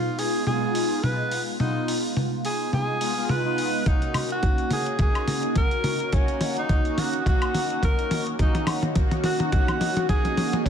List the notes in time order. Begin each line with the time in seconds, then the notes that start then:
Already playing: G#3 B3 D#4 F4
0.19 G#4, open hi-hat
0.46 G#3 B3 D#4 F4 G#4, mid tom
0.75 open hi-hat
1.03 G#3 B3 D#4 F4 B4, mid tom
1.31 open hi-hat
1.59 G#3 B3 D#4 F4, mid tom
1.88 open hi-hat
2.17 mid tom
2.45 G#4, open hi-hat
2.73 G#4, mid tom
3.00 G#3 B3 D#4 F4, open hi-hat
3.16 G#3 B3 D#4 F4
3.29 B4, mid tom
3.45 G#3 B3 D#4 F4
3.58 open hi-hat
3.85 A#3 C#4 D#4 F#4, kick, closed hi-hat, mid tom
4.02 closed hi-hat
4.14 open hi-hat, mid tom, high woodblock
4.30 F#4, closed hi-hat
4.43 kick, closed hi-hat, mid tom
4.58 closed hi-hat
4.71 G#4, open hi-hat, mid tom
4.86 closed hi-hat
4.98 A#3 C#4 D#4 F#4 G#4, kick, closed hi-hat, mid tom
5.15 closed hi-hat, high woodblock
5.28 open hi-hat, mid tom
5.43 closed hi-hat
5.56 A#4, kick, closed hi-hat, mid tom
5.71 closed hi-hat
5.84 open hi-hat, mid tom
6.00 closed hi-hat
6.12 A#3 C#4 D#4 F#4, kick, closed hi-hat, mid tom
6.28 closed hi-hat
6.41 open hi-hat, mid tom
6.57 D#4, closed hi-hat
6.69 kick, closed hi-hat, mid tom
6.85 closed hi-hat
6.98 F#4, open hi-hat, mid tom
7.13 closed hi-hat
7.25 A#3 C#4 D#4 F#4, kick, closed hi-hat, mid tom
7.42 closed hi-hat, high woodblock
7.54 open hi-hat, mid tom
7.70 closed hi-hat
7.83 A#4, kick, closed hi-hat, mid tom
7.99 closed hi-hat
8.11 open hi-hat, mid tom
8.27 closed hi-hat
8.39 A#3 C#4 D#4 F#4, kick, closed hi-hat, mid tom
8.55 closed hi-hat, mid tom
8.67 open hi-hat, mid tom, high woodblock
8.83 closed hi-hat, mid tom
8.96 A#3 C#4 D#4 F#4, kick, closed hi-hat, mid tom
9.11 closed hi-hat, mid tom
9.24 F#4, open hi-hat, mid tom
9.40 closed hi-hat, mid tom
9.52 A#3 C#4 D#4 F#4, kick, closed hi-hat, mid tom
9.68 closed hi-hat, mid tom, high woodblock
9.81 open hi-hat, mid tom
9.97 closed hi-hat, mid tom
10.08 A#3 C#4 D#4 F#4 G#4, kick, closed hi-hat, mid tom
10.25 closed hi-hat, mid tom
10.37 open hi-hat, mid tom
10.53 closed hi-hat, mid tom
10.65 A#3 C#4 D#4, kick, closed hi-hat, mid tom